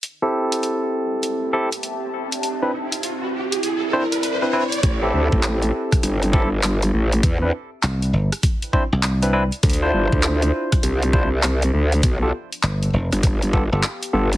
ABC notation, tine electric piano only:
X:1
M:4/4
L:1/16
Q:"Swing 16ths" 1/4=100
K:C
V:1 name="Tine electric piano"
z [CEGA]8- [CEGA] [CEGA] z4 z | z [CDEB] z8 [CDEc] z2 [CDEB] [CDEB] z | z [CEGA]8- [CEGA] [CEGA] z4 z | z [CDEB] z8 [CDEc] z2 [CDEB] [CDEB] z |
z [DEFc]8- [DEFc] [DEFc] z4 z | z [B,FGA] z8 [B,FGA] [B,FGA] z2 [B,FGA] z |]